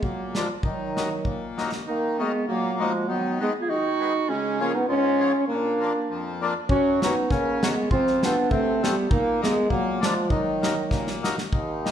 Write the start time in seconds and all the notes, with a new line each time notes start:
0.02 A#2 F#3 A#3, kick
0.35 F3 G#3 A#3 D4, snare
0.63 D#3 F#3, kick
0.96 F#3 A#3 D#4, snare
1.24 A#2, kick
1.57 F#3 A#3 D#4, snare
1.72 snare
1.87 D#3 A#3 D#4
2.19 F#3 G#3 A#3 B3 D#4
2.47 A#2 F#3 A#3
2.79 F3 F#3 G#3 A#3 D#4
3.07 D#3 F#3 B3
3.40 G#3 B3 D#4
3.61 F4 G#4
3.69 D#3 D#4 F#4
4.00 G#3 B3 D#4
4.28 C#3 G#3 C#4
4.59 F3 G#3 A#3 C#4
4.75 B3 D#4
4.88 G#2 C#4 F4
5.19 F3 G#3 C#4
5.48 A#2 A#3 D4
5.80 F3 A#3 D4
6.09 F2
6.41 F3 A#3 D4
6.69 F#2 C#4 F#4, kick
7.02 F#3 A#3 B3 C#4 D#4, snare, hi-hat pedal
7.30 C#3 A#3 C#4, kick, snare
7.62 F#3 G#3 A#3 B3 C#4, snare, hi-hat pedal
7.91 F2 C4 F4, kick
8.07 snare
8.23 F3 A3 B3 C4 D4, snare, hi-hat pedal
8.51 C3 A3 C4, kick
8.82 F3 G3 A3 B3 C4, snare, hi-hat pedal
9.10 A#2 A#3 D#4, kick
9.41 F3 G#3 A#3 B3 D#4, snare, hi-hat pedal
9.68 A#2 F#3 A#3, kick
10.00 F3 G#3 A#3 D4, snare, hi-hat pedal
10.28 D#3 F#3, kick
10.61 F#3 A#3 D#4, snare, hi-hat pedal
10.89 A#2, kick, snare
11.07 snare
11.22 F#3 A#3 D#4, snare, hi-hat pedal
11.38 snare
11.52 D#2 D#3, kick
11.84 G3 A#3 D#4, snare